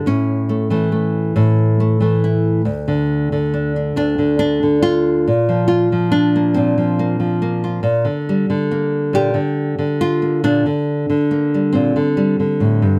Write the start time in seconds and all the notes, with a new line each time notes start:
0.06 A2 C#4
0.49 A3
0.70 E3 A3
0.92 A3
1.36 A2 A3
1.80 A3
2.00 E3 A3
2.24 E4
2.65 D2
2.88 D3
3.32 D3
3.54 D4
3.76 D4
3.96 D2 D4
4.18 D3
4.39 D4
4.63 D3
4.82 F4
5.28 A#2
5.49 F3
5.68 F4
5.92 F3
6.12 D4
6.36 A#3
6.54 A#2 C4
6.78 F3
6.99 A#3
7.20 F3
7.42 A#3
7.64 F4
7.83 A#2
8.05 D3
8.29 G3
8.50 D3
8.71 A#3
9.13 A#2 G4
9.34 D3
9.78 D3
10.01 F4
10.22 A#3
10.44 A#2 D4
10.66 D3
11.10 D3
11.31 A#3
11.54 G3
11.73 A#2 C4
11.96 D3
12.17 G3
12.40 D3
12.60 A2
12.82 G2